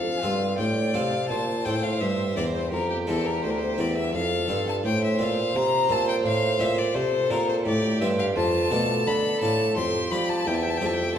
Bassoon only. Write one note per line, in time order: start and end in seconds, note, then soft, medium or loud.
0.00 0.21 F2 medium
0.23 0.61 G2 soft
0.59 0.94 A2 medium
0.94 1.32 C3 soft
1.30 1.65 A#2 medium
1.66 2.01 A2 soft
2.01 2.36 G2 medium
2.37 2.72 E2 soft
2.72 3.07 F2 medium
3.07 3.42 E2 medium
3.43 3.78 D2 medium
3.79 4.13 E2 medium
4.14 4.48 F2 medium
4.49 4.83 G2 medium
4.84 5.19 A2 medium
5.19 5.54 A#2 medium
5.55 5.89 C3 medium
5.89 6.26 A#2 medium
6.24 6.59 A2 medium
6.59 6.94 A#2 medium
6.94 7.29 C3 medium
7.30 7.67 A#2 medium
7.65 8.00 A2 medium
8.01 8.35 G2 medium
8.36 8.70 F2 medium
8.71 9.05 B2 medium
9.06 9.41 D3 medium
9.41 9.75 A2 medium
9.76 10.11 F2 medium
10.11 10.46 F3 medium
10.46 10.81 E2 medium
10.81 11.15 F2 medium